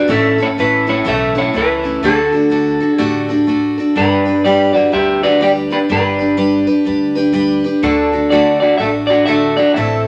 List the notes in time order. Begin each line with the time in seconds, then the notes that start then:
Already playing: D5
0.08 A1 A2 E3 A3 C#4 E4 A4
0.12 E5
0.38 A3 C#4 E4 A4
0.42 C#5
0.58 A1 A3 C#4 E4 A4 B4
0.87 A3 C#4 E4 A4 C#5
1.05 B1 A2 E3 A3 C#4 E4 A4
1.09 E5
1.35 A3 C#4 E4 A4 C#5
1.54 C#2 A3 C#4 E4 A4 B4
1.83 A3 C#4 E4 A4
2.03 D2 D3 A3 D4 F#4 A4
2.32 D4 F#4 A4
2.50 A3 D4 F#4 A4
2.80 D4 F#4 A4
2.98 A1 D3 A3 D4 F#4 G4 A4
3.29 D4 F#4 A4
3.47 A3 D4 F#4 A4
3.78 D4 F#4 A4
3.95 G1 G3 D4 G4 B4
4.25 D4 G4 B4
4.45 G3 D4 G4 B4 D5
4.73 D4 F#4 G4 B4 D5
4.92 D2 G3 D4 G4 B4 E5
5.23 D4 F#4 G4 B4 D5
5.40 G3 D4 G4 B4 D5
5.70 D4 G4 B4
5.89 G1 G3 D4 G4 B4
6.19 D4 G4 B4
6.37 G3 D4 G4 B4
6.67 D4 G4 B4
6.85 D2 G3 D4 G4 B4
7.15 D4 G4 B4
7.33 G3 D4 G4 B4
7.64 D4 G4 B4
7.83 D2 D3 A3 D4 F#4 A4
8.12 D4 F#4 A4
8.30 D3 A3 D4 F#4 A4 D5
8.60 D4 F#4 A4 D5
8.78 A1 A3 D4 F#4 A4 E5
9.07 D4 F#4 A4 D5
9.26 D3 A3 D4 F#4 A4 E5
9.57 D4 F#4 A4 D5
9.74 A1 A2 E3 A3 C4 E4 A4 E5